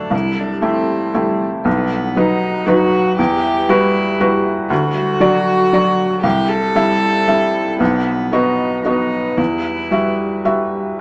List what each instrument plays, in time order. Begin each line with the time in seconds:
Already playing: felt piano D2 A3 D4 F#4, cello D4, ambient pad A4
0.10 felt piano C2, ambient pad G3 E4, marimba C4, cello E4
0.24 marimba E4
0.38 cello D4, marimba A4
0.51 marimba G4
0.62 felt piano A3 E4 G4, marimba C4, cello C4
0.76 marimba G4
0.89 marimba E4
1.14 felt piano A3 E4 G4, marimba C4
1.27 marimba E4
1.39 marimba A4
1.64 felt piano B1, ambient pad F#3 D#4 B4, cello B3, marimba B4
1.78 marimba D#5
1.90 marimba B5
2.03 marimba F#5
2.15 felt piano F#3 D#4 B4, cello D#4, marimba B4
2.28 marimba F#5
2.41 marimba D#5
2.54 marimba B5
2.66 felt piano F#3 D#4 B4, cello F#4, marimba B4
2.79 marimba D#5
2.92 marimba B5
3.18 felt piano E2, ambient pad G3 F#5, marimba E4, cello G4
3.31 marimba G4
3.43 marimba E5
3.57 marimba B4
3.69 felt piano G3 F#4 B4, cello E4, marimba E4
3.83 marimba B4
3.95 marimba G4
4.08 marimba E5
4.20 felt piano G3 F#4 B4, marimba E4
4.32 marimba G4
4.44 marimba E5
4.69 felt piano D2, ambient pad F#3 A4, marimba D4, cello F#4
4.82 marimba F#4
4.95 marimba D5
5.08 marimba A4
5.20 felt piano F#3 F#4 D5, marimba D4
5.59 marimba D5
5.72 felt piano F#3 F#4 D5, marimba D4
6.22 felt piano C2, ambient pad G3 E4 C5, marimba C4, cello G4
6.35 marimba E4
6.47 marimba A4, cello A4
6.60 marimba G4
6.74 felt piano G3 E4 E5, marimba C4
6.87 marimba G4
7.01 marimba E4
7.14 marimba A4
7.27 felt piano G3 E4 E5, marimba C4
7.40 marimba E4
7.53 marimba A4
7.78 felt piano B1, ambient pad F#3 D#4 B4, cello B3, marimba B4
7.91 marimba D#5
8.05 marimba B5
8.18 marimba F#5
8.32 felt piano B3 F#4 D#5, cello D#4, marimba B4
8.44 marimba F#5
8.58 marimba D#5
8.72 marimba B5
8.85 felt piano B3 F#4 D#5, cello D#4, marimba B4
8.98 marimba D#5
9.11 marimba B5
9.37 felt piano E2, ambient pad G3 F#4, cello E4, marimba E4
9.51 marimba G4
9.64 marimba E5
9.78 marimba B4
9.91 felt piano G3 F#4 E5, marimba E4
10.05 marimba B4
10.19 marimba G4
10.33 marimba E5
10.45 felt piano G3 F#4 E5, marimba E4
10.60 marimba G4
10.74 marimba E5